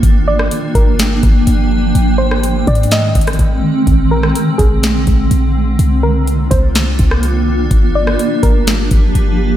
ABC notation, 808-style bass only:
X:1
M:4/4
L:1/8
Q:1/4=125
K:Gphr
V:1 name="808-style bass" clef=bass
G,,,2 z G,,,2 G,,, G,,,2 | A,,,3 A,,2 A,,, A,,, z | B,,,2 z B,,,2 B,,, B,,,2 | C,,3 C,,2 C,,3 |
G,,,2 z G,,,2 G,,, G,,,2 |]